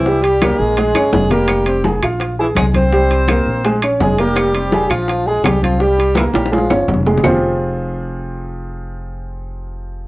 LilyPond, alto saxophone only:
\new Staff \with { instrumentName = "Alto saxophone" } { \time 4/4 \key f \minor \tempo 4 = 167 e'8 g'4 aes'4. aes'8 g'8~ | g'4 r4. e'8 aes'8 c''8~ | c''2~ c''8 r8 aes'8 g'8~ | g'4. f'4 aes'8 g'8 f'8 |
g'4 e'8 g'8 f'4 r4 | r1 | r1 | }